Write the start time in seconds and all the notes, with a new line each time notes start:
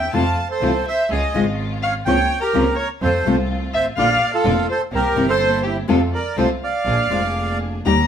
Already playing: D#2 E5 G5
0.12 F2 C3 E3 A3 C4 E4 F4 F5 A5
0.51 A4 C5
0.61 C2 C3 E3 A3 C4 E4 F4
0.88 C5 E5
1.10 C#2 G#3 C#4 F4 G#4 D#5
1.34 G#1 C#3 F3 G#3 C#4 F4
1.83 C#5 F5
2.06 C#2 C#3 F3 A#3 C4 C#4 F4 C#5 G5
2.40 G4 A#4
2.53 C#2 C#3 F3 A#3 C4 C#4 F4
2.75 A#4 C#5
3.01 F2 A3 C4 F4 A4 C5
3.25 C2 C3 F3 A3 C4 F4
3.74 G#1 C5 E5
3.96 A#1 D3 A#3 D4 F4 D5 F5
4.34 F4 A4
4.44 F1 D3 A#3 D4 F4
4.69 A4 C5
4.92 C2 A#3 C4 E4 G4 A#4
5.16 G1 C3 E3 A#3 C4 E4
5.29 A4 C5
5.63 E4 G4
5.88 F2 C3 F3 A3 C4 F4 A4
6.14 A#4 D5
6.37 C2 C3 F3 A3 C4 F4 A4 C5
6.63 D5 F5
6.85 A#1 A#3 D4 G#4
7.10 F1 F3 G#3 A#3 D4 F4 G#4
7.85 D#2 D#3 G3 A#3 D#4 G4 A#5